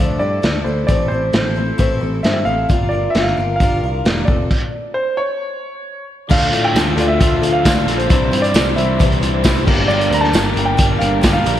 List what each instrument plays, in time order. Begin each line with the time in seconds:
Already playing: twelve-string acoustic guitar D3 F3, grand piano D5
0.00 picked electric bass D2, twelve-string acoustic guitar A3 D4 E4 A4
0.19 picked electric bass G2, twelve-string acoustic guitar A3 D4 E4 A4, grand piano D5
0.42 picked electric bass D2, twelve-string acoustic guitar A3 D4 E4 A4, snare, closed hi-hat
0.64 picked electric bass D2, twelve-string acoustic guitar D4 E4 A4, grand piano C5
0.69 twelve-string acoustic guitar A3
0.87 picked electric bass A1, twelve-string acoustic guitar A2 E3 A3 C4 E4 A4, grand piano D5, kick, closed hi-hat
1.08 picked electric bass A1, twelve-string acoustic guitar A4, grand piano C5
1.12 twelve-string acoustic guitar A3 C4 E4
1.33 picked electric bass A1, twelve-string acoustic guitar A3 C4 E4 A4, snare, closed hi-hat
1.55 twelve-string acoustic guitar A3 C4 E4 A4
1.78 picked electric bass A1, twelve-string acoustic guitar A2 E3 A3 C4 E4 A4, kick, closed hi-hat
2.00 picked electric bass A1, twelve-string acoustic guitar A3 C4 E4 A4
2.23 picked electric bass G2, twelve-string acoustic guitar A3 C4 E4 A4, grand piano E5, snare, closed hi-hat
2.45 picked electric bass A1, twelve-string acoustic guitar C4 E4 A4, grand piano F5
2.49 twelve-string acoustic guitar A3
2.69 picked electric bass G1, twelve-string acoustic guitar G3 D4 F4 A#4, kick, closed hi-hat
2.89 twelve-string acoustic guitar A#4, grand piano D5
2.93 twelve-string acoustic guitar D4 F4
3.10 grand piano E5
3.14 picked electric bass G1, twelve-string acoustic guitar G3 D4 F4 A#4, snare, closed hi-hat
3.22 grand piano F5
3.27 snare
3.37 picked electric bass G1, twelve-string acoustic guitar D4 F4 A#4
3.56 grand piano F5
3.60 picked electric bass G1, twelve-string acoustic guitar G3 D4 F4 A#4, kick, closed hi-hat
3.83 picked electric bass C2, twelve-string acoustic guitar D4 F4 A#4
4.05 picked electric bass E1, twelve-string acoustic guitar G3 D4 F4, snare, closed hi-hat
4.09 twelve-string acoustic guitar A#4
4.25 picked electric bass F1, twelve-string acoustic guitar F4 A4, grand piano D5, kick
4.30 twelve-string acoustic guitar C4
4.51 kick, crash
4.94 grand piano C5
5.17 grand piano C#5
6.27 picked electric bass D2, twelve-string acoustic guitar D3 A3 D4, tonewheel organ F4 A4 D5, grand piano F5, kick, crash
6.31 twelve-string acoustic guitar F4 A4
6.42 closed hi-hat
6.53 picked electric bass A2, twelve-string acoustic guitar D4 F4 A4, closed hi-hat
6.65 grand piano G5
6.74 picked electric bass D2, overdriven electric guitar D3, twelve-string acoustic guitar A3 D4 F4, snare, closed hi-hat, tambourine
6.79 twelve-string acoustic guitar A4
6.96 picked electric bass D2, overdriven electric guitar A3, twelve-string acoustic guitar F4 A4, closed hi-hat
7.00 twelve-string acoustic guitar D4, grand piano D5
7.08 grand piano E5
7.20 picked electric bass D2, twelve-string acoustic guitar D3 A3 D4 F4 A4, kick, closed hi-hat
7.41 picked electric bass D2, twelve-string acoustic guitar D4 F4 A4, closed hi-hat
7.53 grand piano F5
7.64 picked electric bass D2, overdriven electric guitar D3, twelve-string acoustic guitar A3 D4 F4 A4, kick, snare, closed hi-hat, tambourine
7.85 picked electric bass A#1, overdriven electric guitar A3, twelve-string acoustic guitar F4 A4, snare, closed hi-hat
7.91 twelve-string acoustic guitar D4
7.98 grand piano C5, closed hi-hat
8.10 picked electric bass C2, twelve-string acoustic guitar C3 E3 G3 D4 E4 C5, overdriven electric guitar C4, tonewheel organ E4 C5 D5, kick, closed hi-hat
8.32 picked electric bass G2, twelve-string acoustic guitar G3 D4 E4 C5, closed hi-hat
8.42 grand piano D5, closed hi-hat
8.54 picked electric bass C2, overdriven electric guitar C3 E3 C4, twelve-string acoustic guitar G3 D4 E4 C5, snare, closed hi-hat, tambourine
8.76 picked electric bass C2, twelve-string acoustic guitar G3 D4 E4 C5, overdriven electric guitar C4, grand piano E5, closed hi-hat
8.99 picked electric bass C2, twelve-string acoustic guitar C3 E3 G3 D4 E4 C5, overdriven electric guitar C4, kick, closed hi-hat
9.12 closed hi-hat
9.21 picked electric bass C2, twelve-string acoustic guitar G3 D4 E4 C5, closed hi-hat
9.43 picked electric bass C2, overdriven electric guitar E3 C4, twelve-string acoustic guitar G3 D4 E4 C5, kick, snare, closed hi-hat, tambourine
9.56 closed hi-hat
9.65 picked electric bass G1, overdriven electric guitar D3 G3 A#3, tonewheel organ G4 A#4 D5, twelve-string acoustic guitar G4 A#4, kick, crash
9.69 overdriven electric guitar G2, twelve-string acoustic guitar D4
9.88 picked electric bass G1, overdriven electric guitar G2 D3 A#3, twelve-string acoustic guitar G3 D4 G4 A#4, grand piano D5
10.01 closed hi-hat
10.10 picked electric bass D2, twelve-string acoustic guitar D4 G4 A#4, grand piano A#5, closed hi-hat
10.21 grand piano A5, snare
10.32 picked electric bass G1, overdriven electric guitar G2 D3 A#3, twelve-string acoustic guitar G3 D4 G4 A#4, snare, closed hi-hat, tambourine
10.54 picked electric bass G1, twelve-string acoustic guitar D4 G4 A#4, closed hi-hat
10.58 overdriven electric guitar G3 A#3
10.65 grand piano G5
10.77 picked electric bass G1, twelve-string acoustic guitar G3 D4 G4 A#4, overdriven electric guitar A#3, kick, closed hi-hat
10.99 picked electric bass G1, twelve-string acoustic guitar G4 A#4, grand piano F5, closed hi-hat
11.03 twelve-string acoustic guitar D4
11.21 picked electric bass G1, twelve-string acoustic guitar G3 D4 G4 A#4, overdriven electric guitar A#3, kick, snare, closed hi-hat, tambourine
11.33 grand piano F5
11.44 picked electric bass A#1, overdriven electric guitar A#3, twelve-string acoustic guitar D4 G4 A#4, closed hi-hat
11.49 overdriven electric guitar G3